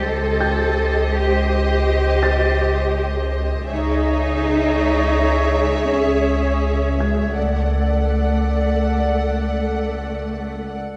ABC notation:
X:1
M:5/4
L:1/8
Q:1/4=82
K:none
V:1 name="Felt piano"
[c'c''] [gg']4- [gg'] a'4- | a'2 z6 z ^g'- | ^g'4- g' z4 z |]
V:2 name="Violin section"
_e8- e2 | e8- e2 | ^f8- f z |]
V:3 name="Viola section"
[Gc]8- [Gc]2 | [^G^c]8- [Gc]2 | [Ad]8- [Ad] z |]
V:4 name="Cello section"
A3 G G4 z2 | ^D6 ^C3 ^G, | A,8- A, z |]
V:5 name="Double bass section" clef=bass
^C,,8- C,,2 | ^C,,8- C,,2 | ^C,,8- C,, z |]